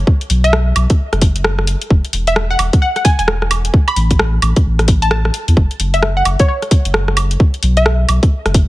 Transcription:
0.07 kick loud
0.21 closed hi-hat soft
0.30 0.72 B1 medium
0.30 open hi-hat loud
0.44 1.07 E5 medium
0.44 closed hi-hat medium
0.53 cross-stick loud
0.76 0.86 B1 loud
0.76 open hi-hat loud
0.76 high woodblock medium
0.90 kick loud
0.90 closed hi-hat medium
1.13 1.76 F#1 loud
1.13 cross-stick medium
1.13 closed hi-hat soft
1.22 kick loud
1.22 open hi-hat loud
1.36 closed hi-hat medium
1.44 cross-stick loud
1.59 cross-stick medium
1.67 open hi-hat medium
1.81 closed hi-hat medium
1.90 2.01 E1 loud
1.90 kick loud
2.05 closed hi-hat soft
2.13 2.55 E1 medium
2.13 open hi-hat loud
2.27 2.35 E5 medium
2.27 closed hi-hat medium
2.36 cross-stick loud
2.51 2.58 F#5 medium
2.59 2.69 E1 loud
2.59 open hi-hat loud
2.59 high woodblock medium
2.73 kick loud
2.73 closed hi-hat medium
2.82 2.91 F#5 medium
2.96 3.02 F#5 medium
2.96 cross-stick soft
2.96 closed hi-hat soft
3.05 3.14 G#5 medium
3.05 kick loud
3.05 open hi-hat loud
3.19 3.70 E1 medium
3.19 3.25 G#5 medium
3.19 closed hi-hat medium
3.28 cross-stick loud
3.42 cross-stick medium
3.51 open hi-hat loud
3.51 high woodblock medium
3.65 closed hi-hat medium
3.74 kick loud
3.88 3.96 B5 medium
3.88 closed hi-hat soft
3.88 high woodblock medium
3.96 4.39 A1 medium
3.96 open hi-hat loud
4.11 kick medium
4.11 closed hi-hat medium
4.19 cross-stick loud
4.42 4.53 A1 loud
4.42 open hi-hat loud
4.42 high woodblock medium
4.56 kick loud
4.56 closed hi-hat medium
4.65 5.30 A1 medium
4.79 cross-stick medium
4.79 closed hi-hat soft
4.88 kick loud
4.88 open hi-hat loud
5.02 5.08 A5 medium
5.02 closed hi-hat medium
5.11 5.20 A5 medium
5.11 cross-stick loud
5.25 cross-stick medium
5.34 open hi-hat medium
5.48 5.55 E2 medium
5.48 closed hi-hat medium
5.57 5.67 F#1 loud
5.57 kick loud
5.71 closed hi-hat soft
5.80 6.22 F#1 medium
5.80 open hi-hat loud
5.94 6.02 E5 medium
5.94 closed hi-hat medium
6.03 cross-stick loud
6.17 6.25 F#5 medium
6.25 6.36 F#1 loud
6.25 open hi-hat loud
6.25 high woodblock medium
6.39 6.45 C#5 medium
6.39 kick loud
6.39 closed hi-hat medium
6.48 6.57 C#5 medium
6.62 cross-stick soft
6.62 closed hi-hat soft
6.71 kick loud
6.71 open hi-hat loud
6.85 7.36 F#1 medium
6.85 closed hi-hat medium
6.94 cross-stick loud
7.08 cross-stick medium
7.17 open hi-hat loud
7.17 high woodblock medium
7.31 closed hi-hat medium
7.40 kick loud
7.54 closed hi-hat soft
7.63 8.05 B1 loud
7.63 open hi-hat loud
7.77 8.40 E5 medium
7.77 closed hi-hat medium
7.86 cross-stick loud
8.09 8.19 B1 loud
8.09 open hi-hat loud
8.09 high woodblock medium
8.23 kick loud
8.23 closed hi-hat medium
8.46 8.68 F#1 medium
8.46 cross-stick medium
8.46 closed hi-hat soft
8.54 kick loud
8.54 open hi-hat loud

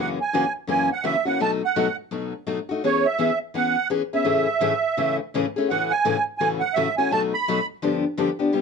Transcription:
0.00 0.18 F#2 medium
0.00 0.18 C#3 medium
0.00 0.18 E3 medium
0.00 0.18 A#3 medium
0.00 0.18 C#4 medium
0.00 0.18 F#4 medium
0.00 0.09 F#5 medium
0.21 0.53 G#5 medium
0.33 0.43 F#2 medium
0.33 0.44 C#3 medium
0.33 0.44 E3 medium
0.33 0.44 A#3 medium
0.33 0.44 C#4 medium
0.33 0.44 F#4 medium
0.67 0.88 F#2 medium
0.67 0.89 C#3 medium
0.67 0.89 E3 medium
0.67 0.89 A#3 medium
0.67 0.89 C#4 medium
0.67 0.89 F#4 medium
0.67 0.90 G#5 medium
0.93 1.05 F#5 medium
1.04 1.15 F#2 medium
1.04 1.15 C#3 medium
1.04 1.15 E3 medium
1.04 1.15 A#3 medium
1.04 1.15 C#4 medium
1.04 1.15 F#4 medium
1.04 1.24 E5 medium
1.25 1.39 E3 soft
1.25 1.39 A#3 soft
1.25 1.39 C#4 medium
1.25 1.38 F#4 medium
1.25 1.40 F#5 medium
1.40 1.61 B2 medium
1.40 1.61 F#3 medium
1.40 1.61 A3 medium
1.40 1.61 D#4 medium
1.40 1.61 F#4 medium
1.40 1.51 A5 loud
1.65 1.96 F#5 medium
1.76 1.87 B2 medium
1.76 1.87 F#3 medium
1.76 1.87 A3 medium
1.76 1.87 D#4 medium
1.76 1.87 F#4 medium
2.11 2.32 B2 medium
2.11 2.32 F#3 medium
2.11 2.32 A3 medium
2.11 2.32 D#4 medium
2.11 2.33 F#4 medium
2.47 2.58 B2 medium
2.47 2.58 F#3 medium
2.47 2.58 A3 medium
2.47 2.58 D#4 medium
2.47 2.58 F#4 medium
2.69 2.83 A3 soft
2.69 2.83 D#4 soft
2.69 2.82 F#4 medium
2.84 3.04 E3 medium
2.84 3.04 B3 medium
2.84 3.05 C#4 medium
2.84 3.05 G#4 medium
2.84 3.07 C#5 medium
3.06 3.39 E5 medium
3.19 3.30 E3 medium
3.19 3.30 B3 medium
3.19 3.30 C#4 medium
3.19 3.30 G#4 medium
3.54 3.75 E3 medium
3.54 3.76 B3 medium
3.54 3.76 C#4 medium
3.54 3.76 G#4 medium
3.54 3.88 F#5 loud
3.90 4.01 E3 medium
3.90 4.01 B3 medium
3.90 4.02 C#4 medium
3.90 4.01 G#4 medium
4.13 4.25 B3 soft
4.13 4.24 C#4 medium
4.13 4.24 G#4 medium
4.13 5.17 E5 medium
4.25 4.46 A2 medium
4.25 4.46 C#3 medium
4.25 4.46 E3 medium
4.25 4.46 A3 medium
4.25 4.47 C#4 medium
4.25 4.47 G#4 medium
4.61 4.72 A2 medium
4.61 4.72 C#3 medium
4.61 4.72 E3 medium
4.61 4.72 A3 loud
4.61 4.73 C#4 medium
4.61 4.73 G#4 medium
4.97 5.18 A2 medium
4.97 5.18 C#3 medium
4.97 5.19 E3 medium
4.97 5.19 A3 medium
4.97 5.19 C#4 medium
4.97 5.19 G#4 medium
5.34 5.45 A2 medium
5.34 5.45 C#3 medium
5.34 5.45 E3 medium
5.34 5.45 A3 medium
5.34 5.45 C#4 medium
5.34 5.45 G#4 medium
5.56 5.70 E3 soft
5.56 5.70 A3 medium
5.56 5.69 C#4 medium
5.56 5.68 G#4 medium
5.70 5.90 A2 medium
5.70 5.91 C#3 medium
5.70 5.91 E3 medium
5.70 5.91 A3 medium
5.70 5.91 C#4 medium
5.70 5.91 F#4 medium
5.70 5.92 F#5 medium
5.91 6.24 G#5 medium
6.05 6.16 A2 medium
6.05 6.16 C#3 medium
6.05 6.16 E3 medium
6.05 6.16 A3 medium
6.05 6.16 C#4 medium
6.05 6.16 F#4 medium
6.38 6.61 A2 medium
6.38 6.61 C#3 medium
6.38 6.61 E3 medium
6.38 6.61 A3 medium
6.38 6.61 C#4 medium
6.38 6.61 F#4 medium
6.38 6.48 G#5 medium
6.60 6.75 F#5 medium
6.74 6.87 A2 medium
6.74 6.87 C#3 medium
6.74 6.87 E3 medium
6.74 6.87 A3 medium
6.74 6.87 C#4 medium
6.74 6.87 F#4 medium
6.74 6.95 E5 medium
6.97 7.11 E3 soft
6.97 7.11 A3 medium
6.97 7.11 C#4 medium
6.97 7.11 F#4 medium
6.97 7.11 G#5 medium
7.11 7.32 B2 medium
7.11 7.32 F#3 medium
7.11 7.33 A3 medium
7.11 7.33 D#4 medium
7.11 7.33 F#4 medium
7.11 7.22 A5 medium
7.33 7.66 B5 medium
7.48 7.58 B2 medium
7.48 7.59 F#3 medium
7.48 7.59 A3 medium
7.48 7.59 D#4 medium
7.48 7.59 F#4 medium
7.82 8.03 G2 medium
7.82 8.03 D3 medium
7.82 8.03 F3 medium
7.82 8.04 B3 medium
7.82 8.04 D4 medium
7.82 8.04 G4 medium
8.17 8.29 G2 medium
8.17 8.29 D3 medium
8.17 8.29 F3 medium
8.17 8.29 B3 medium
8.17 8.29 D4 medium
8.17 8.29 G4 medium
8.39 8.53 F3 soft
8.39 8.52 B3 soft
8.39 8.53 D4 soft
8.39 8.52 G4 soft
8.52 8.62 C3 medium
8.52 8.62 G3 medium
8.52 8.62 B3 medium
8.52 8.62 E4 medium
8.52 8.62 G4 medium

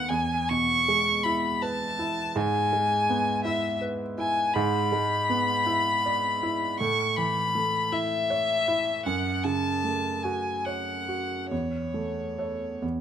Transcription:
0.00 0.12 D#3 soft
0.00 0.12 A3 soft
0.00 0.12 B3 soft
0.00 0.12 B4 soft
0.08 2.32 E2 medium
0.08 0.50 G#5 medium
0.48 1.10 B2 soft
0.48 1.25 C#6 medium
0.88 1.47 G#3 soft
1.24 1.84 E4 medium
1.24 1.64 B5 medium
1.62 2.21 B4 soft
1.62 2.38 A5 medium
1.99 2.36 E4 soft
2.36 4.50 G#2 medium
2.36 3.43 G#5 medium
2.73 3.30 G#3 soft
3.09 3.66 B3 soft
3.44 4.02 E4 soft
3.44 3.79 E5 medium
3.81 4.39 B4 soft
4.18 4.54 E4 soft
4.18 4.56 G#5 medium
4.54 6.77 G#2 medium
4.54 6.79 B5 medium
4.92 5.52 G#3 soft
5.30 5.90 B3 soft
5.67 6.28 E4 medium
6.06 6.65 D5 soft
6.43 6.80 E4 medium
6.80 9.01 A2 medium
6.80 7.18 C#6 medium
7.17 7.77 E3 soft
7.17 7.94 B5 medium
7.55 8.14 A3 soft
7.92 8.52 E4 medium
7.92 9.05 E5 medium
8.30 8.90 C#5 soft
8.68 9.06 E4 soft
9.06 11.48 F#2 medium
9.06 9.45 F#5 medium
9.44 10.08 C#3 soft
9.44 10.24 A5 medium
9.84 10.49 A3 soft
10.22 10.91 F#4 soft
10.22 10.66 G#5 medium
10.65 11.34 C#5 soft
10.65 11.50 F#5 medium
11.08 11.51 F#4 soft
11.51 12.79 E2 soft
11.51 12.80 C#5 soft
11.94 12.65 A3 soft
12.38 12.79 A4 soft
12.38 12.79 C#5 soft
12.82 13.01 E2 soft

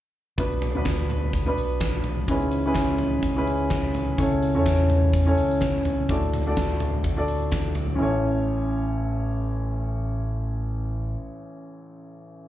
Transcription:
0.38 0.72 B1 medium
0.38 0.66 B3 medium
0.38 0.67 D4 medium
0.38 0.67 F#4 medium
0.38 0.67 B4 medium
0.38 kick loud
0.38 closed hi-hat medium
0.51 closed hi-hat soft
0.62 closed hi-hat medium
0.62 floor tom medium
0.75 1.53 D2 medium
0.75 1.30 B3 medium
0.75 1.31 D4 medium
0.75 1.31 F#4 medium
0.75 1.31 B4 medium
0.85 kick medium
0.85 snare medium
0.85 closed hi-hat medium
1.10 closed hi-hat medium
1.10 floor tom medium
1.33 kick medium
1.33 closed hi-hat medium
1.46 2.11 B3 medium
1.46 2.12 D4 medium
1.46 2.12 F#4 medium
1.46 2.12 B4 medium
1.57 2.01 B1 medium
1.57 closed hi-hat medium
1.80 kick loud
1.80 snare loud
1.80 closed hi-hat medium
2.03 2.26 B1 medium
2.03 closed hi-hat medium
2.03 floor tom medium
2.28 3.19 C#2 medium
2.28 2.96 G#2 medium
2.28 2.57 C#4 medium
2.28 2.57 E4 medium
2.28 2.58 G#4 medium
2.28 2.58 B4 medium
2.28 kick medium
2.28 closed hi-hat medium
2.41 closed hi-hat soft
2.51 closed hi-hat medium
2.66 3.21 C#4 medium
2.66 3.21 E4 medium
2.66 3.21 G#4 medium
2.66 3.22 B4 medium
2.74 kick medium
2.74 snare loud
2.74 closed hi-hat medium
2.98 closed hi-hat medium
2.98 floor tom medium
3.23 4.14 C#2 loud
3.23 kick medium
3.23 closed hi-hat medium
3.36 4.02 C#4 medium
3.36 4.02 E4 medium
3.36 4.02 G#4 medium
3.36 4.02 B4 medium
3.47 closed hi-hat medium
3.70 kick loud
3.70 snare loud
3.70 closed hi-hat medium
3.94 closed hi-hat medium
3.94 floor tom medium
4.18 4.53 C#2 loud
4.18 4.86 C#3 medium
4.18 4.47 C#4 medium
4.18 4.47 E4 medium
4.18 4.48 A4 medium
4.18 4.48 C#5 medium
4.18 kick medium
4.18 closed hi-hat medium
4.42 closed hi-hat medium
4.55 5.33 E2 medium
4.55 5.11 C#4 medium
4.55 5.11 E4 medium
4.55 5.11 A4 medium
4.55 5.11 C#5 medium
4.66 kick medium
4.66 snare loud
4.66 closed hi-hat medium
4.89 closed hi-hat medium
4.89 floor tom medium
5.13 kick medium
5.13 closed hi-hat medium
5.26 5.92 C#4 medium
5.26 5.92 E4 medium
5.26 5.92 A4 medium
5.26 5.93 C#5 medium
5.37 5.82 C#2 medium
5.37 closed hi-hat medium
5.51 closed hi-hat soft
5.61 kick loud
5.61 snare medium
5.61 closed hi-hat medium
5.85 6.08 C#2 medium
5.85 closed hi-hat medium
5.85 floor tom medium
6.09 7.00 D2 loud
6.09 6.77 A2 medium
6.09 6.38 D4 medium
6.09 6.38 F#4 medium
6.09 6.38 A4 medium
6.09 6.39 D5 medium
6.09 kick loud
6.09 closed hi-hat medium
6.33 closed hi-hat medium
6.33 floor tom medium
6.46 7.02 D4 medium
6.46 7.02 F#4 medium
6.46 7.02 A4 medium
6.46 7.02 D5 medium
6.57 kick medium
6.57 snare loud
6.57 closed hi-hat medium
6.80 closed hi-hat medium
6.80 floor tom medium
7.04 7.95 D2 loud
7.04 kick medium
7.04 closed hi-hat medium
7.17 7.82 D4 medium
7.17 7.82 F#4 medium
7.17 7.83 A4 medium
7.17 7.83 D5 medium
7.28 closed hi-hat medium
7.52 kick loud
7.52 snare medium
7.52 closed hi-hat medium
7.75 closed hi-hat medium
7.75 floor tom medium
7.95 11.14 A1 medium
7.95 11.10 C#4 medium
7.95 11.12 E4 medium
8.00 11.15 A1 medium
8.00 11.15 A4 medium
8.00 11.17 C#5 medium

